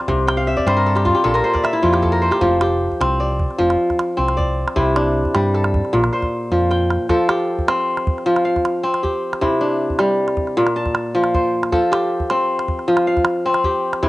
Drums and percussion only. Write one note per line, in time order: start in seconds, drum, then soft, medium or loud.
0.09 calabash thump medium
0.09 calabash click soft
0.28 calabash click medium
0.58 calabash thump soft
0.68 calabash click medium
0.97 calabash click soft
1.06 calabash thump medium
1.16 calabash click soft
1.35 calabash click soft
1.55 calabash thump soft
1.55 calabash click soft
1.65 calabash click medium
1.94 calabash click soft
2.03 calabash thump medium
2.32 calabash click soft
2.41 calabash thump medium
2.41 calabash click soft
2.61 calabash click medium
2.92 calabash thump soft
3.01 calabash click medium
3.39 calabash thump medium
3.51 calabash click soft
3.70 calabash click soft
3.90 calabash thump soft
3.90 calabash click soft
3.99 calabash click medium
4.28 calabash click soft
4.39 calabash thump medium
4.68 calabash click soft
4.76 calabash thump medium
4.76 calabash click soft
4.86 calabash click soft
4.96 calabash click medium
5.25 calabash thump soft
5.35 calabash click medium
5.54 calabash click soft
5.64 calabash click soft
5.74 calabash thump medium
5.85 calabash click soft
6.04 calabash click soft
6.13 calabash click soft
6.22 calabash thump soft
6.22 calabash click soft
6.52 calabash thump soft
6.72 calabash click soft
6.91 calabash click soft
7.09 calabash thump medium
7.09 calabash click soft
7.29 calabash click medium
7.59 calabash thump medium
7.68 calabash click medium
7.97 calabash click soft
8.07 calabash thump medium
8.18 calabash click soft
8.36 calabash click soft
8.56 calabash thump medium
8.56 calabash click soft
8.65 calabash click medium
8.94 calabash click soft
9.04 calabash thump medium
9.33 calabash click soft
9.42 calabash thump medium
9.42 calabash click soft
9.90 calabash thump soft
9.99 calabash click medium
10.28 calabash click soft
10.37 calabash thump medium
10.47 calabash click soft
10.67 calabash click soft
10.86 calabash thump soft
10.86 calabash click soft
10.95 calabash click medium
11.24 calabash click soft
11.35 calabash thump medium
11.63 calabash click soft
11.72 calabash thump medium
11.72 calabash click soft
11.93 calabash click medium
12.20 calabash thump soft
12.30 calabash click medium
12.59 calabash click medium
12.68 calabash thump medium
12.79 calabash click soft
12.97 calabash click medium
13.17 calabash thump medium
13.17 calabash click soft
13.25 calabash click medium
13.54 calabash click soft
13.64 calabash thump medium
13.93 calabash click medium
14.03 calabash thump medium